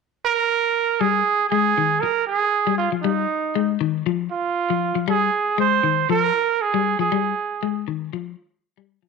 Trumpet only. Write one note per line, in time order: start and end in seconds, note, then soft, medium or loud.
0.25 1.02 A#4 loud
1.01 1.49 G#4 loud
1.50 2.02 G#4 medium
2.01 2.26 A#4 loud
2.27 2.75 G#4 loud
2.78 2.89 F4 medium
3.02 3.75 D#4 medium
4.32 5.03 F4 medium
5.09 5.56 G#4 medium
5.60 6.06 C5 loud
6.10 6.63 A#4 loud
6.61 6.99 G#4 medium
7.00 7.97 G#4 medium